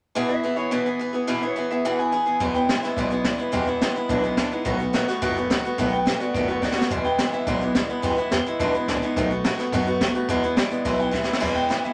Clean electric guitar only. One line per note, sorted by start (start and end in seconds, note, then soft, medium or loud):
0.29 0.56 E5 loud
0.56 0.71 C#5 medium
0.71 0.84 B4 medium
0.86 1.13 B4 medium
1.42 1.56 C#5 loud
1.56 1.70 B4 medium
1.71 1.85 E5 loud
1.85 1.98 F#5 medium
1.99 2.11 G#5 medium
2.13 2.40 G#5 loud
2.55 2.82 G5 loud
2.83 2.97 E5 medium
2.97 3.12 D5 loud
3.12 3.25 B4 medium
3.25 3.39 D5 medium
3.40 3.53 B4 medium
3.54 3.67 G4 medium
3.68 3.82 E4 medium
3.82 3.96 G4 medium
3.96 4.09 E4 medium
4.10 4.23 D4 loud
4.37 4.52 D4 medium
4.52 4.79 D#4 medium
5.92 6.19 G5 medium
6.20 6.33 D5 medium
6.34 6.47 D5 medium
6.48 6.61 B4 medium
6.61 6.76 D5 medium
6.76 6.90 B4 medium
7.05 7.32 G5 loud
7.34 7.48 E5 medium
7.48 7.62 D5 medium
7.62 7.75 B4 medium
7.76 7.89 D5 medium
7.90 8.03 B4 medium
8.04 8.17 G4 medium
8.18 8.32 E4 loud
8.32 8.46 G4 medium
8.46 8.59 E4 medium
8.59 8.73 D4 loud
8.88 9.03 D4 medium
9.03 9.30 D#4 medium
10.57 10.84 D5 loud
10.85 10.99 E5 medium
10.99 11.13 G5 medium
11.13 11.41 E5 loud
11.56 11.83 G5 medium
11.85 11.93 E5 medium